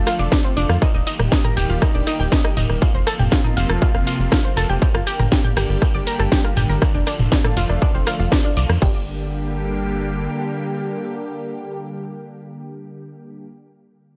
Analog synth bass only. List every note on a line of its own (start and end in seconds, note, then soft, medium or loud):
0.19 0.28 F1 medium
0.57 0.66 F1 medium
0.69 0.78 F2 medium
0.94 1.03 D#1 medium
1.19 1.28 D#1 medium
1.57 1.66 D#1 medium
1.70 1.78 D#1 medium
1.95 2.03 D#1 medium
2.20 2.28 D#1 medium
2.57 2.66 D#1 medium
2.69 2.78 D#1 medium
2.94 3.03 F1 medium
3.20 3.28 F1 medium
3.57 3.66 F1 medium
3.70 3.78 F1 medium
3.95 4.03 F1 medium
4.19 4.28 F1 medium
4.57 4.66 F1 loud
4.70 4.78 F1 medium
4.95 5.03 G1 medium
5.20 5.28 G1 medium
5.57 5.66 G1 loud
5.69 5.78 G1 medium
5.95 6.03 G1 medium
6.19 6.28 G1 medium
6.57 6.66 G1 medium
6.69 6.78 G1 medium
6.94 7.03 F1 medium
7.19 7.28 F1 medium
7.57 7.66 F1 medium
7.69 7.78 F1 medium
7.94 8.03 F1 medium
8.19 8.28 F1 medium
8.57 8.66 C2 medium
8.69 8.78 F2 medium
8.82 10.28 G1 loud